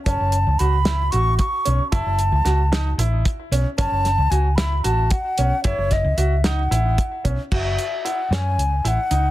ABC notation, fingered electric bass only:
X:1
M:7/8
L:1/16
Q:1/4=113
K:F#dor
V:1 name="Fingered electric bass" clef=bass
F,,, F,,,2 C,, C,,4 A,,,2 z2 B,,, z | F,,, F,,,2 C,, C,,4 A,,,2 z2 B,,, z | F,,, F,,,2 C,, C,,4 A,,,2 z2 B,,, z | F,,, F,,,2 C,, C,,4 A,,,2 z2 B,,, z |
F,,,2 z4 F,,2 C,,2 A,,, z C,,2 |]